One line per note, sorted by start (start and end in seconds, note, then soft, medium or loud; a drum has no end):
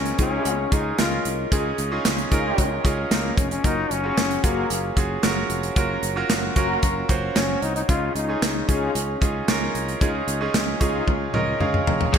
0.00 0.11 C#2 medium
0.00 0.15 C#3 medium
0.00 0.18 C#4 medium
0.00 0.19 C#4 medium
0.00 0.19 D#4 medium
0.00 0.19 F4 medium
0.00 0.19 G#4 medium
0.00 0.16 A#4 medium
0.06 closed hi-hat medium
0.18 0.38 C#2 medium
0.18 0.68 C#4 medium
0.18 0.74 C#4 medium
0.18 0.53 D#4 medium
0.18 0.68 D#4 medium
0.18 0.53 F4 loud
0.18 0.68 F4 medium
0.18 0.53 G#4 loud
0.18 0.68 G#4 medium
0.18 kick medium
0.18 closed hi-hat medium
0.45 0.65 C#2 loud
0.45 closed hi-hat medium
0.71 0.91 C#2 medium
0.71 0.96 C#4 medium
0.71 0.97 D#4 medium
0.71 0.99 D#4 medium
0.71 0.97 F4 medium
0.71 0.97 G#4 medium
0.71 kick medium
0.71 closed hi-hat medium
0.98 1.18 C#2 loud
0.98 1.47 C#4 medium
0.98 1.48 D#4 medium
0.98 1.48 F4 medium
0.98 1.36 F4 medium
0.98 1.48 A#4 medium
0.98 snare loud
0.98 closed hi-hat loud
1.25 1.44 C2 medium
1.25 closed hi-hat medium
1.52 1.71 C#2 loud
1.52 2.28 C#3 medium
1.52 1.89 C#4 medium
1.52 1.63 D#4 medium
1.52 1.89 D#4 medium
1.52 1.63 F4 medium
1.52 1.89 F4 medium
1.52 1.63 G#4 medium
1.52 1.89 G#4 medium
1.52 kick loud
1.52 closed hi-hat medium
1.78 1.97 C#2 medium
1.78 closed hi-hat medium
1.91 2.28 C#4 medium
1.91 2.28 D#4 medium
1.91 2.29 F4 medium
1.91 2.29 G#4 medium
2.05 2.24 C#2 medium
2.05 snare loud
2.05 closed hi-hat loud
2.18 closed hi-hat soft
2.31 2.51 C#2 medium
2.31 2.80 C#4 medium
2.31 2.65 D#4 medium
2.31 2.81 D#4 medium
2.31 2.65 F4 medium
2.31 2.81 F4 medium
2.31 2.65 G#4 loud
2.31 2.81 A#4 medium
2.31 kick medium
2.31 closed hi-hat medium
2.58 2.77 C#2 medium
2.58 kick medium
2.58 closed hi-hat medium
2.84 3.04 C#2 medium
2.84 3.09 C#4 medium
2.84 3.09 D#4 medium
2.84 3.09 F4 medium
2.84 3.09 G#4 medium
2.84 kick medium
2.84 closed hi-hat medium
3.11 3.30 C#2 medium
3.11 3.40 A#3 medium
3.11 3.60 C#4 medium
3.11 3.60 D#4 medium
3.11 3.60 F4 medium
3.11 3.61 A#4 medium
3.11 snare loud
3.11 closed hi-hat medium
3.37 3.57 F1 medium
3.37 3.51 C#4 medium
3.37 kick loud
3.37 closed hi-hat medium
3.51 3.66 C#4 medium
3.51 closed hi-hat soft
3.64 3.83 F#1 loud
3.64 3.75 A#3 medium
3.64 4.01 C#4 medium
3.64 3.93 D#4 loud
3.64 4.01 F4 medium
3.64 3.75 F#4 medium
3.64 4.01 F#4 medium
3.64 3.75 A#4 medium
3.64 4.01 A#4 medium
3.64 kick medium
3.64 closed hi-hat medium
3.91 4.10 F#1 medium
3.91 4.46 C#4 loud
3.91 closed hi-hat medium
4.04 4.41 C#4 medium
4.04 4.41 F4 medium
4.04 4.41 F#4 medium
4.04 4.41 G#4 medium
4.17 4.36 F#1 medium
4.17 snare loud
4.17 closed hi-hat medium
4.31 closed hi-hat medium
4.43 4.63 F#1 medium
4.43 4.66 A#3 medium
4.43 4.97 A#3 medium
4.43 4.93 C#4 medium
4.43 4.93 F4 medium
4.43 4.66 F#4 loud
4.43 4.93 F#4 medium
4.43 4.93 G#4 medium
4.43 4.66 A#4 loud
4.43 kick medium
4.43 closed hi-hat medium
4.70 4.89 F#1 loud
4.70 closed hi-hat medium
4.96 5.16 F#1 medium
4.96 5.21 C#4 medium
4.96 5.21 F4 medium
4.96 5.21 F#4 medium
4.96 5.22 G#4 medium
4.96 kick medium
4.96 closed hi-hat medium
5.23 5.42 F#1 medium
5.23 5.72 C#4 medium
5.23 5.72 F4 medium
5.23 5.73 F#4 medium
5.23 5.73 A#4 medium
5.23 snare loud
5.23 closed hi-hat medium
5.50 5.69 F1 medium
5.50 closed hi-hat medium
5.63 closed hi-hat soft
5.76 5.95 F#1 medium
5.76 5.88 A#3 medium
5.76 6.13 C#4 medium
5.76 6.13 F4 medium
5.76 5.88 F#4 medium
5.76 6.13 F#4 medium
5.76 5.88 A#4 medium
5.76 6.14 A#4 medium
5.76 kick medium
5.76 closed hi-hat medium
6.03 6.22 F#1 medium
6.03 closed hi-hat medium
6.16 6.53 C#4 medium
6.16 6.53 F4 medium
6.16 6.53 F#4 medium
6.16 6.54 A#4 medium
6.29 6.49 F#1 medium
6.29 snare loud
6.29 closed hi-hat loud
6.56 6.75 F#1 medium
6.56 6.79 A#3 medium
6.56 7.05 C#4 medium
6.56 7.05 F4 medium
6.56 6.79 F#4 loud
6.56 7.05 F#4 medium
6.56 6.79 A#4 loud
6.56 7.06 A#4 loud
6.56 kick medium
6.56 closed hi-hat medium
6.83 7.02 F#1 medium
6.83 kick medium
6.83 closed hi-hat medium
7.09 7.28 F#1 medium
7.09 7.33 C#4 medium
7.09 7.34 F4 medium
7.09 7.34 F#4 medium
7.09 7.34 C5 medium
7.09 kick medium
7.09 closed hi-hat medium
7.35 7.55 F#1 medium
7.35 7.85 C#4 medium
7.35 7.64 C#4 medium
7.35 7.85 F4 medium
7.35 7.85 F#4 medium
7.35 7.85 C#5 medium
7.35 snare loud
7.35 closed hi-hat medium
7.62 7.81 C2 medium
7.62 7.75 D#4 medium
7.62 closed hi-hat medium
7.76 7.82 D#4 medium
7.76 closed hi-hat soft
7.89 8.08 C#2 loud
7.89 8.65 C#3 medium
7.89 8.26 C#4 medium
7.89 8.00 D#4 medium
7.89 8.26 D#4 medium
7.89 8.00 F4 medium
7.89 8.14 F4 loud
7.89 8.26 F4 medium
7.89 8.00 G#4 medium
7.89 8.26 G#4 medium
7.89 kick medium
7.89 closed hi-hat medium
8.15 8.34 C#2 medium
8.15 8.70 D#4 medium
8.15 closed hi-hat medium
8.28 8.65 C#4 medium
8.28 8.66 D#4 medium
8.28 8.66 F4 medium
8.28 8.66 G#4 medium
8.42 8.61 C#2 medium
8.42 snare loud
8.42 closed hi-hat loud
8.68 8.88 C#2 medium
8.68 9.17 C#4 medium
8.68 9.22 C#4 medium
8.68 9.18 D#4 medium
8.68 8.91 D#4 medium
8.68 8.91 F4 medium
8.68 9.18 F4 medium
8.68 8.91 G#4 loud
8.68 9.18 G#4 medium
8.68 kick medium
8.68 closed hi-hat medium
8.95 9.14 C#2 loud
8.95 closed hi-hat medium
9.21 9.41 C#2 medium
9.21 9.46 C#4 medium
9.21 9.46 D#4 medium
9.21 9.46 F4 medium
9.21 9.46 G#4 medium
9.21 kick medium
9.21 closed hi-hat medium
9.48 9.67 C#2 loud
9.48 9.97 C#4 medium
9.48 9.97 D#4 medium
9.48 9.98 F4 medium
9.48 9.98 A#4 loud
9.48 snare loud
9.48 closed hi-hat loud
9.75 9.94 C2 medium
9.75 closed hi-hat medium
9.89 closed hi-hat soft
10.01 10.20 C#2 medium
10.01 10.77 C#3 medium
10.01 10.38 C#4 medium
10.01 10.12 D#4 medium
10.01 10.38 D#4 medium
10.01 10.12 F4 medium
10.01 10.38 F4 medium
10.01 10.12 G#4 medium
10.01 10.38 G#4 medium
10.01 kick medium
10.01 closed hi-hat medium
10.28 10.47 C#2 medium
10.28 closed hi-hat medium
10.41 10.78 C#4 medium
10.41 10.78 D#4 medium
10.41 10.78 F4 medium
10.41 10.78 G#4 medium
10.54 10.73 C#2 loud
10.54 snare loud
10.54 closed hi-hat loud
10.80 11.00 C#2 medium
10.80 11.30 C#4 medium
10.80 11.30 D#4 medium
10.80 11.03 D#4 loud
10.80 11.03 F4 medium
10.80 11.30 F4 medium
10.80 11.03 G#4 loud
10.80 11.30 G#4 medium
10.80 kick medium
10.80 closed hi-hat medium
11.07 11.27 C#2 loud
11.07 kick medium
11.07 high tom medium
11.33 11.53 C#2 medium
11.33 11.58 C#4 medium
11.33 11.58 D#4 medium
11.33 11.59 F4 medium
11.33 11.59 A#4 medium
11.33 11.59 D#5 medium
11.33 mid tom medium
11.60 11.79 C#2 loud
11.60 12.09 C#4 medium
11.60 12.10 D#4 medium
11.60 12.10 F4 medium
11.60 12.10 G#4 medium
11.60 11.85 F5 medium
11.60 mid tom medium
11.74 mid tom medium
11.87 12.06 F1 medium
11.87 12.12 A#5 medium
11.87 floor tom medium
12.01 floor tom medium
12.12 12.18 F#1 loud
12.12 12.18 F#2 medium
12.12 12.18 C#3 medium
12.12 12.18 G#3 medium
12.12 12.18 A#3 medium
12.12 12.18 C#4 medium
12.12 12.18 F#4 medium
12.12 12.18 G#4 loud
12.12 kick loud
12.12 crash loud